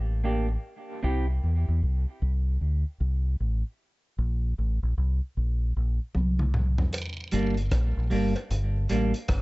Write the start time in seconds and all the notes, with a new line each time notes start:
Already playing: A1
0.24 A#3 D4 G4
0.49 muted clean electric guitar stroke
1.03 C2 C4 E4 G4
1.43 E2
1.69 E2
1.83 C2
2.22 C2
2.61 D2
3.00 C2
3.40 A1
4.18 A#1
4.58 A1
4.83 A#1
4.98 C2
5.37 A#1
5.76 A#1
6.15 C2, high tom
6.39 mid tom
6.54 mid tom
6.78 floor tom
6.93 closed hi-hat, cowbell, vibraslap
7.32 G1 G3 A#3 D4, closed hi-hat
7.57 closed hi-hat
7.71 A#1, kick, cross-stick, closed hi-hat, cowbell
7.97 A#1
8.10 G1 G3 A#3 D4, open hi-hat
8.36 muted clean electric guitar stroke, closed hi-hat, cowbell
8.51 G1, closed hi-hat
8.89 A1 G3 A#3 D4, closed hi-hat
9.14 closed hi-hat
9.28 G1, kick, cross-stick, closed hi-hat, cowbell